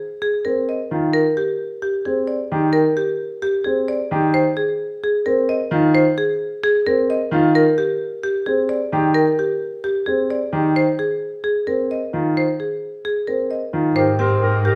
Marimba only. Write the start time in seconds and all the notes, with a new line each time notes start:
0.22 G#4
0.45 A#4
0.69 D#5
1.13 A#4
1.37 G4
1.82 G4
2.05 G#4
2.27 D5
2.73 A#4
2.97 G4
3.42 G4
3.64 G#4
3.88 D5
4.34 C5
4.57 G#4
5.04 G#4
5.26 A#4
5.49 D#5
5.95 C5
6.18 G#4
6.64 G#4
6.87 A#4
7.10 D#5
7.55 A#4
7.78 G4
8.23 G4
8.46 G#4
8.69 D5
9.14 A#4
9.39 G4
9.84 G4
10.06 G#4
10.30 D5
10.76 C5
10.99 G#4
11.44 G#4
11.67 A#4
11.91 D#5
12.37 C5
12.60 G#4
13.05 G#4
13.27 A#4
13.51 D#5
13.96 C5
14.19 G4
14.65 G4